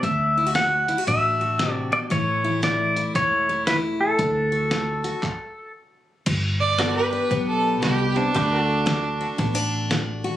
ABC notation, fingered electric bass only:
X:1
M:4/4
L:1/8
Q:"Swing" 1/4=115
K:G
V:1 name="Fingered electric bass" clef=bass
D,,4 A,,,4 | A,,,4 E,,,4 | D,,4 z4 | G,,,4 B,,,2 C,,2 |
D,,4 A,,,4 |]